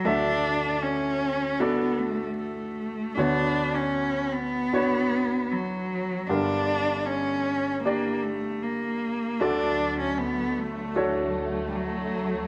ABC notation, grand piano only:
X:1
M:4/4
L:1/8
Q:1/4=77
K:D
V:1 name="Grand piano"
[A,FAe]4 [DFAd]4 | [B,FBc]4 [DFBc]4 | [D,G_B]4 [DGd]4 | [DFAd]4 [DFAc]4 |]
V:2 name="Grand piano" clef=bass
[D,,D,]8 | [D,,D,]8 | [G,,,G,,]8 | [D,,D,]8 |]